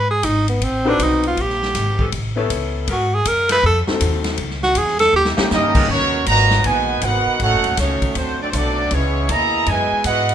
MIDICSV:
0, 0, Header, 1, 9, 480
1, 0, Start_track
1, 0, Key_signature, 5, "minor"
1, 0, Tempo, 377358
1, 1744, Time_signature, 4, 2, 24, 8
1, 13160, End_track
2, 0, Start_track
2, 0, Title_t, "Trumpet section"
2, 0, Program_c, 0, 61
2, 7038, Note_on_c, 0, 61, 99
2, 7038, Note_on_c, 0, 70, 92
2, 7043, Note_on_c, 0, 67, 94
2, 7044, Note_on_c, 0, 75, 108
2, 7477, Note_off_c, 0, 61, 0
2, 7477, Note_off_c, 0, 70, 0
2, 7480, Note_off_c, 0, 67, 0
2, 7481, Note_off_c, 0, 75, 0
2, 7512, Note_on_c, 0, 70, 97
2, 7513, Note_on_c, 0, 73, 113
2, 7514, Note_on_c, 0, 59, 88
2, 7517, Note_on_c, 0, 66, 97
2, 7954, Note_off_c, 0, 70, 0
2, 7955, Note_off_c, 0, 59, 0
2, 7955, Note_off_c, 0, 73, 0
2, 7956, Note_off_c, 0, 66, 0
2, 7985, Note_on_c, 0, 66, 112
2, 7987, Note_on_c, 0, 71, 101
2, 7987, Note_on_c, 0, 82, 114
2, 7993, Note_on_c, 0, 75, 106
2, 8430, Note_off_c, 0, 66, 0
2, 8431, Note_off_c, 0, 71, 0
2, 8431, Note_off_c, 0, 82, 0
2, 8435, Note_off_c, 0, 75, 0
2, 8462, Note_on_c, 0, 66, 98
2, 8464, Note_on_c, 0, 80, 105
2, 8470, Note_on_c, 0, 71, 101
2, 8470, Note_on_c, 0, 75, 90
2, 8940, Note_off_c, 0, 71, 0
2, 8943, Note_off_c, 0, 66, 0
2, 8944, Note_off_c, 0, 80, 0
2, 8946, Note_off_c, 0, 75, 0
2, 8948, Note_on_c, 0, 70, 95
2, 8951, Note_on_c, 0, 63, 92
2, 8952, Note_on_c, 0, 78, 107
2, 8955, Note_on_c, 0, 71, 90
2, 9420, Note_off_c, 0, 63, 0
2, 9420, Note_off_c, 0, 78, 0
2, 9425, Note_off_c, 0, 70, 0
2, 9429, Note_off_c, 0, 71, 0
2, 9432, Note_on_c, 0, 73, 106
2, 9434, Note_on_c, 0, 69, 99
2, 9435, Note_on_c, 0, 63, 100
2, 9435, Note_on_c, 0, 78, 115
2, 9874, Note_off_c, 0, 73, 0
2, 9875, Note_off_c, 0, 69, 0
2, 9876, Note_off_c, 0, 63, 0
2, 9876, Note_off_c, 0, 78, 0
2, 9909, Note_on_c, 0, 57, 91
2, 9914, Note_on_c, 0, 73, 97
2, 9918, Note_on_c, 0, 63, 89
2, 9918, Note_on_c, 0, 66, 88
2, 10353, Note_off_c, 0, 57, 0
2, 10355, Note_off_c, 0, 73, 0
2, 10357, Note_off_c, 0, 66, 0
2, 10358, Note_off_c, 0, 63, 0
2, 10402, Note_on_c, 0, 72, 102
2, 10406, Note_on_c, 0, 62, 79
2, 10406, Note_on_c, 0, 66, 91
2, 10407, Note_on_c, 0, 57, 80
2, 10696, Note_off_c, 0, 66, 0
2, 10701, Note_off_c, 0, 72, 0
2, 10703, Note_off_c, 0, 57, 0
2, 10703, Note_off_c, 0, 62, 0
2, 10707, Note_on_c, 0, 60, 95
2, 10707, Note_on_c, 0, 69, 87
2, 10710, Note_on_c, 0, 74, 99
2, 10711, Note_on_c, 0, 66, 87
2, 10800, Note_off_c, 0, 60, 0
2, 10801, Note_off_c, 0, 69, 0
2, 10802, Note_off_c, 0, 74, 0
2, 10803, Note_off_c, 0, 66, 0
2, 10819, Note_on_c, 0, 72, 79
2, 10873, Note_off_c, 0, 72, 0
2, 10881, Note_on_c, 0, 60, 85
2, 10883, Note_on_c, 0, 66, 91
2, 10883, Note_on_c, 0, 69, 90
2, 10884, Note_on_c, 0, 74, 109
2, 11353, Note_off_c, 0, 60, 0
2, 11353, Note_off_c, 0, 66, 0
2, 11353, Note_off_c, 0, 69, 0
2, 11354, Note_off_c, 0, 74, 0
2, 11360, Note_on_c, 0, 59, 89
2, 11361, Note_on_c, 0, 73, 104
2, 11363, Note_on_c, 0, 68, 93
2, 11365, Note_on_c, 0, 64, 104
2, 11823, Note_off_c, 0, 68, 0
2, 11832, Note_off_c, 0, 59, 0
2, 11833, Note_off_c, 0, 73, 0
2, 11835, Note_off_c, 0, 64, 0
2, 11838, Note_on_c, 0, 75, 101
2, 11838, Note_on_c, 0, 76, 100
2, 11839, Note_on_c, 0, 68, 101
2, 11842, Note_on_c, 0, 82, 124
2, 12311, Note_off_c, 0, 75, 0
2, 12311, Note_off_c, 0, 76, 0
2, 12312, Note_off_c, 0, 68, 0
2, 12313, Note_off_c, 0, 82, 0
2, 12320, Note_on_c, 0, 64, 89
2, 12325, Note_on_c, 0, 71, 92
2, 12326, Note_on_c, 0, 75, 95
2, 12329, Note_on_c, 0, 80, 106
2, 12777, Note_off_c, 0, 75, 0
2, 12781, Note_off_c, 0, 71, 0
2, 12783, Note_off_c, 0, 64, 0
2, 12792, Note_on_c, 0, 75, 100
2, 12796, Note_on_c, 0, 71, 96
2, 12797, Note_off_c, 0, 80, 0
2, 12798, Note_on_c, 0, 64, 94
2, 12798, Note_on_c, 0, 78, 105
2, 13160, Note_off_c, 0, 64, 0
2, 13160, Note_off_c, 0, 71, 0
2, 13160, Note_off_c, 0, 75, 0
2, 13160, Note_off_c, 0, 78, 0
2, 13160, End_track
3, 0, Start_track
3, 0, Title_t, "Tenor saxophone"
3, 0, Program_c, 1, 66
3, 0, Note_on_c, 1, 71, 102
3, 131, Note_off_c, 1, 71, 0
3, 138, Note_on_c, 1, 68, 101
3, 317, Note_on_c, 1, 63, 92
3, 336, Note_off_c, 1, 68, 0
3, 618, Note_off_c, 1, 63, 0
3, 624, Note_on_c, 1, 59, 81
3, 812, Note_on_c, 1, 60, 96
3, 831, Note_off_c, 1, 59, 0
3, 1126, Note_on_c, 1, 62, 112
3, 1145, Note_off_c, 1, 60, 0
3, 1315, Note_on_c, 1, 63, 96
3, 1334, Note_off_c, 1, 62, 0
3, 1597, Note_off_c, 1, 63, 0
3, 1618, Note_on_c, 1, 65, 91
3, 1794, Note_on_c, 1, 67, 96
3, 1813, Note_off_c, 1, 65, 0
3, 2729, Note_off_c, 1, 67, 0
3, 3721, Note_on_c, 1, 66, 94
3, 4001, Note_on_c, 1, 68, 104
3, 4020, Note_off_c, 1, 66, 0
3, 4169, Note_on_c, 1, 70, 94
3, 4188, Note_off_c, 1, 68, 0
3, 4464, Note_off_c, 1, 70, 0
3, 4478, Note_on_c, 1, 71, 113
3, 4626, Note_off_c, 1, 71, 0
3, 4656, Note_on_c, 1, 69, 93
3, 4831, Note_off_c, 1, 69, 0
3, 5895, Note_on_c, 1, 66, 106
3, 6077, Note_on_c, 1, 68, 97
3, 6096, Note_off_c, 1, 66, 0
3, 6349, Note_off_c, 1, 68, 0
3, 6357, Note_on_c, 1, 69, 123
3, 6523, Note_off_c, 1, 69, 0
3, 6567, Note_on_c, 1, 67, 93
3, 6744, Note_off_c, 1, 67, 0
3, 13160, End_track
4, 0, Start_track
4, 0, Title_t, "Grand piano"
4, 0, Program_c, 2, 0
4, 1077, Note_on_c, 2, 60, 78
4, 1083, Note_on_c, 2, 63, 67
4, 1087, Note_on_c, 2, 66, 65
4, 1097, Note_on_c, 2, 71, 81
4, 1702, Note_off_c, 2, 60, 0
4, 1705, Note_off_c, 2, 63, 0
4, 1707, Note_off_c, 2, 66, 0
4, 1712, Note_off_c, 2, 71, 0
4, 2998, Note_on_c, 2, 59, 70
4, 3000, Note_on_c, 2, 64, 62
4, 3013, Note_on_c, 2, 69, 59
4, 3017, Note_on_c, 2, 73, 76
4, 3622, Note_off_c, 2, 59, 0
4, 3623, Note_off_c, 2, 64, 0
4, 3630, Note_off_c, 2, 69, 0
4, 3632, Note_off_c, 2, 73, 0
4, 4919, Note_on_c, 2, 60, 61
4, 4928, Note_on_c, 2, 63, 62
4, 4931, Note_on_c, 2, 66, 61
4, 4942, Note_on_c, 2, 69, 70
4, 5543, Note_off_c, 2, 60, 0
4, 5547, Note_off_c, 2, 63, 0
4, 5549, Note_off_c, 2, 66, 0
4, 5554, Note_off_c, 2, 69, 0
4, 6831, Note_on_c, 2, 58, 65
4, 6844, Note_on_c, 2, 61, 68
4, 6847, Note_on_c, 2, 64, 62
4, 6857, Note_on_c, 2, 67, 75
4, 7458, Note_off_c, 2, 58, 0
4, 7465, Note_off_c, 2, 61, 0
4, 7467, Note_off_c, 2, 64, 0
4, 7471, Note_off_c, 2, 67, 0
4, 13160, End_track
5, 0, Start_track
5, 0, Title_t, "Saxophone section"
5, 0, Program_c, 3, 65
5, 1077, Note_on_c, 3, 69, 108
5, 1078, Note_on_c, 3, 60, 101
5, 1081, Note_on_c, 3, 63, 98
5, 1085, Note_on_c, 3, 54, 108
5, 1199, Note_off_c, 3, 60, 0
5, 1199, Note_off_c, 3, 69, 0
5, 1201, Note_off_c, 3, 63, 0
5, 1203, Note_off_c, 3, 54, 0
5, 2526, Note_on_c, 3, 55, 94
5, 2530, Note_on_c, 3, 61, 90
5, 2535, Note_on_c, 3, 59, 86
5, 2535, Note_on_c, 3, 69, 98
5, 2644, Note_off_c, 3, 55, 0
5, 2647, Note_off_c, 3, 61, 0
5, 2650, Note_off_c, 3, 59, 0
5, 2650, Note_off_c, 3, 69, 0
5, 3001, Note_on_c, 3, 61, 88
5, 3002, Note_on_c, 3, 55, 94
5, 3002, Note_on_c, 3, 59, 90
5, 3008, Note_on_c, 3, 69, 119
5, 3624, Note_off_c, 3, 55, 0
5, 3624, Note_off_c, 3, 59, 0
5, 3624, Note_off_c, 3, 61, 0
5, 3627, Note_off_c, 3, 69, 0
5, 3670, Note_on_c, 3, 70, 117
5, 3673, Note_on_c, 3, 54, 100
5, 3674, Note_on_c, 3, 59, 92
5, 3674, Note_on_c, 3, 61, 92
5, 3875, Note_off_c, 3, 70, 0
5, 3877, Note_off_c, 3, 54, 0
5, 3877, Note_off_c, 3, 61, 0
5, 3878, Note_off_c, 3, 59, 0
5, 4435, Note_on_c, 3, 69, 127
5, 4440, Note_on_c, 3, 53, 116
5, 4442, Note_on_c, 3, 63, 102
5, 4448, Note_on_c, 3, 57, 101
5, 4557, Note_off_c, 3, 69, 0
5, 4560, Note_off_c, 3, 53, 0
5, 4562, Note_off_c, 3, 63, 0
5, 4565, Note_off_c, 3, 57, 0
5, 6828, Note_on_c, 3, 52, 106
5, 6830, Note_on_c, 3, 61, 104
5, 6831, Note_on_c, 3, 63, 104
5, 6834, Note_on_c, 3, 67, 124
5, 6952, Note_off_c, 3, 52, 0
5, 6954, Note_off_c, 3, 61, 0
5, 6954, Note_off_c, 3, 63, 0
5, 6956, Note_off_c, 3, 67, 0
5, 7311, Note_on_c, 3, 61, 98
5, 7316, Note_on_c, 3, 54, 91
5, 7317, Note_on_c, 3, 44, 101
5, 7318, Note_on_c, 3, 70, 115
5, 7324, Note_on_c, 3, 59, 93
5, 7434, Note_off_c, 3, 61, 0
5, 7437, Note_off_c, 3, 54, 0
5, 7438, Note_off_c, 3, 44, 0
5, 7439, Note_off_c, 3, 70, 0
5, 7442, Note_off_c, 3, 59, 0
5, 13160, End_track
6, 0, Start_track
6, 0, Title_t, "Trombone section"
6, 0, Program_c, 4, 61
6, 7013, Note_on_c, 4, 58, 101
6, 7018, Note_on_c, 4, 63, 102
6, 7020, Note_on_c, 4, 55, 106
6, 7464, Note_off_c, 4, 58, 0
6, 7466, Note_off_c, 4, 63, 0
6, 7468, Note_off_c, 4, 55, 0
6, 7495, Note_on_c, 4, 51, 92
6, 7495, Note_on_c, 4, 61, 98
6, 7497, Note_on_c, 4, 54, 91
6, 7945, Note_off_c, 4, 51, 0
6, 7945, Note_off_c, 4, 61, 0
6, 7946, Note_off_c, 4, 54, 0
6, 7970, Note_on_c, 4, 54, 96
6, 7973, Note_on_c, 4, 46, 100
6, 7979, Note_on_c, 4, 51, 97
6, 8423, Note_off_c, 4, 54, 0
6, 8424, Note_off_c, 4, 46, 0
6, 8427, Note_off_c, 4, 51, 0
6, 8470, Note_on_c, 4, 59, 101
6, 8472, Note_on_c, 4, 51, 93
6, 8476, Note_on_c, 4, 56, 88
6, 8946, Note_off_c, 4, 59, 0
6, 8947, Note_off_c, 4, 51, 0
6, 8949, Note_off_c, 4, 56, 0
6, 8959, Note_on_c, 4, 59, 94
6, 8961, Note_on_c, 4, 63, 99
6, 8961, Note_on_c, 4, 66, 95
6, 9419, Note_off_c, 4, 66, 0
6, 9431, Note_off_c, 4, 59, 0
6, 9431, Note_on_c, 4, 61, 96
6, 9432, Note_off_c, 4, 63, 0
6, 9434, Note_on_c, 4, 57, 104
6, 9434, Note_on_c, 4, 66, 98
6, 9874, Note_off_c, 4, 61, 0
6, 9875, Note_off_c, 4, 57, 0
6, 9876, Note_off_c, 4, 66, 0
6, 9891, Note_on_c, 4, 54, 88
6, 9893, Note_on_c, 4, 57, 88
6, 9894, Note_on_c, 4, 61, 89
6, 10343, Note_off_c, 4, 54, 0
6, 10344, Note_off_c, 4, 57, 0
6, 10345, Note_off_c, 4, 61, 0
6, 10366, Note_on_c, 4, 54, 78
6, 10371, Note_on_c, 4, 57, 89
6, 10372, Note_on_c, 4, 60, 84
6, 10661, Note_off_c, 4, 54, 0
6, 10666, Note_off_c, 4, 57, 0
6, 10677, Note_on_c, 4, 54, 86
6, 10682, Note_on_c, 4, 57, 77
6, 10686, Note_off_c, 4, 60, 0
6, 10686, Note_on_c, 4, 62, 81
6, 10784, Note_off_c, 4, 54, 0
6, 10787, Note_off_c, 4, 57, 0
6, 10789, Note_off_c, 4, 62, 0
6, 10837, Note_on_c, 4, 57, 92
6, 10840, Note_on_c, 4, 62, 96
6, 10845, Note_on_c, 4, 54, 89
6, 11331, Note_off_c, 4, 57, 0
6, 11332, Note_off_c, 4, 62, 0
6, 11335, Note_off_c, 4, 54, 0
6, 11342, Note_on_c, 4, 56, 102
6, 11346, Note_on_c, 4, 61, 96
6, 11347, Note_on_c, 4, 52, 95
6, 11823, Note_off_c, 4, 56, 0
6, 11825, Note_off_c, 4, 52, 0
6, 11825, Note_off_c, 4, 61, 0
6, 11829, Note_on_c, 4, 47, 97
6, 11836, Note_on_c, 4, 58, 99
6, 11839, Note_on_c, 4, 64, 100
6, 12297, Note_off_c, 4, 47, 0
6, 12311, Note_off_c, 4, 58, 0
6, 12312, Note_off_c, 4, 64, 0
6, 12312, Note_on_c, 4, 47, 87
6, 12312, Note_on_c, 4, 52, 88
6, 12318, Note_on_c, 4, 56, 89
6, 12785, Note_off_c, 4, 56, 0
6, 12789, Note_off_c, 4, 47, 0
6, 12789, Note_off_c, 4, 52, 0
6, 12793, Note_on_c, 4, 59, 94
6, 12800, Note_on_c, 4, 56, 100
6, 12805, Note_on_c, 4, 66, 95
6, 13160, Note_off_c, 4, 56, 0
6, 13160, Note_off_c, 4, 59, 0
6, 13160, Note_off_c, 4, 66, 0
6, 13160, End_track
7, 0, Start_track
7, 0, Title_t, "Upright bass"
7, 0, Program_c, 5, 32
7, 0, Note_on_c, 5, 44, 90
7, 282, Note_off_c, 5, 44, 0
7, 295, Note_on_c, 5, 32, 87
7, 765, Note_off_c, 5, 32, 0
7, 778, Note_on_c, 5, 33, 83
7, 1247, Note_off_c, 5, 33, 0
7, 1262, Note_on_c, 5, 35, 97
7, 1729, Note_off_c, 5, 35, 0
7, 1742, Note_on_c, 5, 34, 85
7, 2209, Note_off_c, 5, 34, 0
7, 2221, Note_on_c, 5, 32, 97
7, 2688, Note_off_c, 5, 32, 0
7, 2702, Note_on_c, 5, 33, 91
7, 3169, Note_off_c, 5, 33, 0
7, 3182, Note_on_c, 5, 37, 92
7, 3648, Note_off_c, 5, 37, 0
7, 3660, Note_on_c, 5, 44, 98
7, 4127, Note_off_c, 5, 44, 0
7, 4142, Note_on_c, 5, 42, 99
7, 4608, Note_off_c, 5, 42, 0
7, 4622, Note_on_c, 5, 41, 101
7, 4909, Note_off_c, 5, 41, 0
7, 5096, Note_on_c, 5, 39, 109
7, 5559, Note_off_c, 5, 39, 0
7, 5567, Note_on_c, 5, 37, 97
7, 6040, Note_off_c, 5, 37, 0
7, 6048, Note_on_c, 5, 40, 101
7, 6521, Note_off_c, 5, 40, 0
7, 6527, Note_on_c, 5, 39, 102
7, 6820, Note_off_c, 5, 39, 0
7, 7013, Note_on_c, 5, 43, 109
7, 7477, Note_off_c, 5, 43, 0
7, 7484, Note_on_c, 5, 39, 92
7, 7959, Note_off_c, 5, 39, 0
7, 7966, Note_on_c, 5, 32, 89
7, 8440, Note_off_c, 5, 32, 0
7, 8448, Note_on_c, 5, 34, 91
7, 8921, Note_off_c, 5, 34, 0
7, 8927, Note_on_c, 5, 32, 90
7, 9220, Note_off_c, 5, 32, 0
7, 9410, Note_on_c, 5, 33, 93
7, 9572, Note_off_c, 5, 33, 0
7, 9572, Note_on_c, 5, 30, 64
7, 9724, Note_off_c, 5, 30, 0
7, 9731, Note_on_c, 5, 27, 72
7, 9886, Note_off_c, 5, 27, 0
7, 9893, Note_on_c, 5, 37, 94
7, 10184, Note_off_c, 5, 37, 0
7, 10374, Note_on_c, 5, 38, 95
7, 10844, Note_off_c, 5, 38, 0
7, 10854, Note_on_c, 5, 35, 106
7, 11325, Note_off_c, 5, 35, 0
7, 11337, Note_on_c, 5, 37, 93
7, 11806, Note_off_c, 5, 37, 0
7, 11821, Note_on_c, 5, 39, 99
7, 12288, Note_off_c, 5, 39, 0
7, 12298, Note_on_c, 5, 42, 92
7, 12588, Note_off_c, 5, 42, 0
7, 12778, Note_on_c, 5, 44, 97
7, 13160, Note_off_c, 5, 44, 0
7, 13160, End_track
8, 0, Start_track
8, 0, Title_t, "Muted upright bass strokes"
8, 4941, Note_on_c, 9, 29, 46
8, 5068, Note_off_c, 9, 29, 0
8, 6844, Note_on_c, 9, 29, 45
8, 6971, Note_off_c, 9, 29, 0
8, 9236, Note_on_c, 9, 29, 48
8, 9363, Note_off_c, 9, 29, 0
8, 10200, Note_on_c, 9, 29, 45
8, 10328, Note_off_c, 9, 29, 0
8, 12618, Note_on_c, 9, 29, 45
8, 12745, Note_off_c, 9, 29, 0
8, 13160, End_track
9, 0, Start_track
9, 0, Title_t, "Drums"
9, 293, Note_on_c, 9, 44, 60
9, 293, Note_on_c, 9, 51, 88
9, 296, Note_on_c, 9, 36, 26
9, 420, Note_off_c, 9, 44, 0
9, 420, Note_off_c, 9, 51, 0
9, 424, Note_off_c, 9, 36, 0
9, 608, Note_on_c, 9, 51, 60
9, 735, Note_off_c, 9, 51, 0
9, 780, Note_on_c, 9, 36, 22
9, 782, Note_on_c, 9, 51, 81
9, 907, Note_off_c, 9, 36, 0
9, 910, Note_off_c, 9, 51, 0
9, 1262, Note_on_c, 9, 36, 21
9, 1265, Note_on_c, 9, 44, 58
9, 1265, Note_on_c, 9, 51, 86
9, 1389, Note_off_c, 9, 36, 0
9, 1393, Note_off_c, 9, 44, 0
9, 1393, Note_off_c, 9, 51, 0
9, 1569, Note_on_c, 9, 51, 51
9, 1696, Note_off_c, 9, 51, 0
9, 1742, Note_on_c, 9, 36, 25
9, 1745, Note_on_c, 9, 51, 62
9, 1869, Note_off_c, 9, 36, 0
9, 1872, Note_off_c, 9, 51, 0
9, 1905, Note_on_c, 9, 38, 30
9, 2033, Note_off_c, 9, 38, 0
9, 2070, Note_on_c, 9, 38, 55
9, 2197, Note_off_c, 9, 38, 0
9, 2221, Note_on_c, 9, 44, 57
9, 2221, Note_on_c, 9, 51, 77
9, 2222, Note_on_c, 9, 36, 21
9, 2225, Note_on_c, 9, 38, 44
9, 2348, Note_off_c, 9, 44, 0
9, 2348, Note_off_c, 9, 51, 0
9, 2350, Note_off_c, 9, 36, 0
9, 2352, Note_off_c, 9, 38, 0
9, 2530, Note_on_c, 9, 36, 70
9, 2657, Note_off_c, 9, 36, 0
9, 2699, Note_on_c, 9, 51, 74
9, 2702, Note_on_c, 9, 36, 26
9, 2827, Note_off_c, 9, 51, 0
9, 2829, Note_off_c, 9, 36, 0
9, 3180, Note_on_c, 9, 44, 73
9, 3180, Note_on_c, 9, 51, 81
9, 3182, Note_on_c, 9, 36, 26
9, 3308, Note_off_c, 9, 44, 0
9, 3308, Note_off_c, 9, 51, 0
9, 3309, Note_off_c, 9, 36, 0
9, 3657, Note_on_c, 9, 51, 70
9, 3661, Note_on_c, 9, 36, 23
9, 3784, Note_off_c, 9, 51, 0
9, 3788, Note_off_c, 9, 36, 0
9, 4138, Note_on_c, 9, 44, 66
9, 4138, Note_on_c, 9, 51, 100
9, 4141, Note_on_c, 9, 36, 23
9, 4265, Note_off_c, 9, 44, 0
9, 4265, Note_off_c, 9, 51, 0
9, 4268, Note_off_c, 9, 36, 0
9, 4441, Note_on_c, 9, 51, 90
9, 4445, Note_on_c, 9, 38, 46
9, 4568, Note_off_c, 9, 51, 0
9, 4572, Note_off_c, 9, 38, 0
9, 4619, Note_on_c, 9, 36, 25
9, 4746, Note_off_c, 9, 36, 0
9, 4929, Note_on_c, 9, 38, 71
9, 5056, Note_off_c, 9, 38, 0
9, 5094, Note_on_c, 9, 44, 71
9, 5094, Note_on_c, 9, 51, 89
9, 5097, Note_on_c, 9, 36, 23
9, 5222, Note_off_c, 9, 44, 0
9, 5222, Note_off_c, 9, 51, 0
9, 5224, Note_off_c, 9, 36, 0
9, 5395, Note_on_c, 9, 51, 59
9, 5399, Note_on_c, 9, 38, 63
9, 5522, Note_off_c, 9, 51, 0
9, 5526, Note_off_c, 9, 38, 0
9, 5565, Note_on_c, 9, 51, 71
9, 5571, Note_on_c, 9, 36, 19
9, 5692, Note_off_c, 9, 51, 0
9, 5698, Note_off_c, 9, 36, 0
9, 5733, Note_on_c, 9, 38, 29
9, 5860, Note_off_c, 9, 38, 0
9, 5888, Note_on_c, 9, 38, 56
9, 6015, Note_off_c, 9, 38, 0
9, 6041, Note_on_c, 9, 44, 58
9, 6041, Note_on_c, 9, 51, 83
9, 6048, Note_on_c, 9, 36, 31
9, 6168, Note_off_c, 9, 44, 0
9, 6168, Note_off_c, 9, 51, 0
9, 6175, Note_off_c, 9, 36, 0
9, 6207, Note_on_c, 9, 38, 32
9, 6334, Note_off_c, 9, 38, 0
9, 6348, Note_on_c, 9, 51, 60
9, 6365, Note_on_c, 9, 38, 60
9, 6475, Note_off_c, 9, 51, 0
9, 6492, Note_off_c, 9, 38, 0
9, 6680, Note_on_c, 9, 38, 71
9, 6807, Note_off_c, 9, 38, 0
9, 6837, Note_on_c, 9, 38, 105
9, 6964, Note_off_c, 9, 38, 0
9, 7004, Note_on_c, 9, 44, 62
9, 7008, Note_on_c, 9, 38, 67
9, 7131, Note_off_c, 9, 44, 0
9, 7135, Note_off_c, 9, 38, 0
9, 7312, Note_on_c, 9, 36, 93
9, 7313, Note_on_c, 9, 49, 96
9, 7440, Note_off_c, 9, 36, 0
9, 7440, Note_off_c, 9, 49, 0
9, 7484, Note_on_c, 9, 36, 23
9, 7611, Note_off_c, 9, 36, 0
9, 7967, Note_on_c, 9, 36, 20
9, 7967, Note_on_c, 9, 44, 66
9, 7967, Note_on_c, 9, 51, 85
9, 8094, Note_off_c, 9, 36, 0
9, 8094, Note_off_c, 9, 44, 0
9, 8094, Note_off_c, 9, 51, 0
9, 8276, Note_on_c, 9, 38, 66
9, 8403, Note_off_c, 9, 38, 0
9, 8445, Note_on_c, 9, 51, 74
9, 8448, Note_on_c, 9, 36, 28
9, 8573, Note_off_c, 9, 51, 0
9, 8575, Note_off_c, 9, 36, 0
9, 8922, Note_on_c, 9, 44, 59
9, 8922, Note_on_c, 9, 51, 86
9, 8929, Note_on_c, 9, 36, 31
9, 9049, Note_off_c, 9, 44, 0
9, 9049, Note_off_c, 9, 51, 0
9, 9056, Note_off_c, 9, 36, 0
9, 9407, Note_on_c, 9, 51, 65
9, 9410, Note_on_c, 9, 36, 27
9, 9535, Note_off_c, 9, 51, 0
9, 9537, Note_off_c, 9, 36, 0
9, 9715, Note_on_c, 9, 51, 62
9, 9842, Note_off_c, 9, 51, 0
9, 9886, Note_on_c, 9, 44, 69
9, 9886, Note_on_c, 9, 51, 89
9, 9890, Note_on_c, 9, 38, 44
9, 9892, Note_on_c, 9, 36, 29
9, 10013, Note_off_c, 9, 44, 0
9, 10013, Note_off_c, 9, 51, 0
9, 10017, Note_off_c, 9, 38, 0
9, 10019, Note_off_c, 9, 36, 0
9, 10200, Note_on_c, 9, 36, 63
9, 10200, Note_on_c, 9, 51, 59
9, 10327, Note_off_c, 9, 51, 0
9, 10328, Note_off_c, 9, 36, 0
9, 10368, Note_on_c, 9, 51, 81
9, 10375, Note_on_c, 9, 36, 26
9, 10495, Note_off_c, 9, 51, 0
9, 10502, Note_off_c, 9, 36, 0
9, 10852, Note_on_c, 9, 44, 80
9, 10852, Note_on_c, 9, 51, 85
9, 10855, Note_on_c, 9, 36, 27
9, 10979, Note_off_c, 9, 44, 0
9, 10979, Note_off_c, 9, 51, 0
9, 10982, Note_off_c, 9, 36, 0
9, 11329, Note_on_c, 9, 51, 71
9, 11335, Note_on_c, 9, 36, 25
9, 11456, Note_off_c, 9, 51, 0
9, 11463, Note_off_c, 9, 36, 0
9, 11813, Note_on_c, 9, 44, 58
9, 11813, Note_on_c, 9, 51, 83
9, 11818, Note_on_c, 9, 36, 28
9, 11941, Note_off_c, 9, 44, 0
9, 11941, Note_off_c, 9, 51, 0
9, 11945, Note_off_c, 9, 36, 0
9, 12292, Note_on_c, 9, 51, 77
9, 12299, Note_on_c, 9, 36, 27
9, 12419, Note_off_c, 9, 51, 0
9, 12426, Note_off_c, 9, 36, 0
9, 12771, Note_on_c, 9, 44, 66
9, 12771, Note_on_c, 9, 51, 78
9, 12779, Note_on_c, 9, 36, 23
9, 12898, Note_off_c, 9, 44, 0
9, 12898, Note_off_c, 9, 51, 0
9, 12906, Note_off_c, 9, 36, 0
9, 13088, Note_on_c, 9, 51, 64
9, 13160, Note_off_c, 9, 51, 0
9, 13160, End_track
0, 0, End_of_file